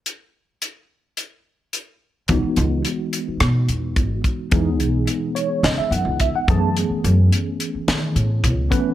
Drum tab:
HH |x-x-x-x-|xxxxxxxx|xxxxxxxx|xxxxxxxx|
SD |--------|----r---|----o---|----o---|
BD |--------|o-----oo|o-----oo|------oo|